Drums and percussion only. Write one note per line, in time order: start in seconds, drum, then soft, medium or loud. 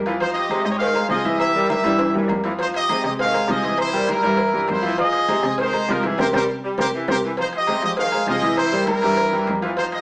0.06 cowbell medium
0.20 cowbell loud
0.20 high conga soft
0.20 low agogo loud
0.35 cowbell medium
0.35 high conga soft
0.35 low agogo medium
0.49 cowbell medium
0.49 high conga medium
0.49 low agogo loud
0.65 cowbell medium
0.80 cowbell loud
0.80 high conga soft
0.80 low agogo medium
0.95 cowbell medium
0.95 high conga soft
0.95 low agogo loud
1.09 cowbell medium
1.09 high conga medium
1.09 low timbale medium
1.09 low agogo medium
1.24 cowbell medium
1.24 high conga medium
1.39 cowbell loud
1.39 high conga soft
1.39 low agogo loud
1.55 high conga soft
1.69 cowbell medium
1.69 high conga loud
1.69 low agogo loud
1.84 cowbell medium
1.84 high timbale loud
1.84 low agogo medium
1.99 cowbell loud
1.99 high conga soft
1.99 high timbale medium
1.99 low agogo medium
2.14 high conga soft
2.14 low timbale medium
2.29 cowbell medium
2.29 high conga medium
2.29 low timbale medium
2.29 low agogo loud
2.44 cowbell medium
2.44 low timbale medium
2.59 cowbell loud
2.59 high conga soft
2.59 low agogo medium
2.74 cowbell medium
2.74 high conga soft
2.74 low agogo medium
2.89 cowbell medium
2.89 high conga medium
2.89 low agogo loud
3.04 cowbell medium
3.19 cowbell loud
3.19 high conga soft
3.19 low agogo medium
3.34 cowbell medium
3.34 high conga soft
3.34 low agogo loud
3.49 cowbell medium
3.49 high conga medium
3.49 low agogo medium
3.64 cowbell medium
3.64 high conga medium
3.78 cowbell medium
3.78 high conga soft
3.78 low agogo loud
3.95 high conga soft
4.08 cowbell medium
4.08 high conga medium
4.08 low agogo loud
4.23 cowbell medium
4.23 low agogo medium
4.37 cowbell loud
4.37 high conga soft
4.37 low agogo medium
4.55 high conga soft
4.68 cowbell medium
4.68 high conga medium
4.68 low timbale medium
4.68 low agogo loud
4.83 cowbell medium
4.98 cowbell loud
4.98 high conga soft
4.98 low agogo medium
5.13 cowbell medium
5.13 high conga soft
5.13 low agogo medium
5.28 cowbell medium
5.28 high conga medium
5.28 low agogo loud
5.43 cowbell medium
5.58 cowbell loud
5.58 high conga soft
5.58 low agogo medium
5.73 cowbell medium
5.73 high conga soft
5.73 low agogo loud
5.88 cowbell medium
5.88 high conga medium
5.88 low agogo medium
6.03 cowbell medium
6.03 high conga medium
6.18 cowbell medium
6.18 high conga loud
6.18 high timbale loud
6.34 cowbell loud
6.34 high conga medium
6.34 high timbale loud
6.78 cowbell loud
6.78 high conga loud
6.78 high timbale loud
7.08 cowbell loud
7.08 high conga loud
7.08 high timbale medium
7.37 cowbell loud
7.37 high conga soft
7.37 low agogo medium
7.53 cowbell medium
7.53 high conga soft
7.53 low agogo medium
7.67 cowbell medium
7.67 high conga medium
7.67 low agogo loud
7.82 cowbell medium
7.97 cowbell loud
7.97 high conga soft
7.97 low agogo medium
8.12 cowbell medium
8.12 high conga soft
8.12 low agogo loud
8.27 cowbell medium
8.27 high conga medium
8.27 low agogo medium
8.42 cowbell medium
8.42 high conga medium
8.57 cowbell loud
8.57 high conga soft
8.57 low agogo loud
8.71 high conga soft
8.87 cowbell medium
8.87 high conga loud
8.87 low agogo loud
9.02 cowbell medium
9.02 low agogo medium
9.17 cowbell loud
9.17 high conga soft
9.17 low agogo medium
9.32 high conga soft
9.47 cowbell medium
9.47 high conga medium
9.47 low timbale medium
9.47 low agogo loud
9.62 cowbell medium
9.77 cowbell loud
9.77 high conga soft
9.77 low agogo medium
9.92 cowbell medium
9.92 high conga soft
9.92 low agogo medium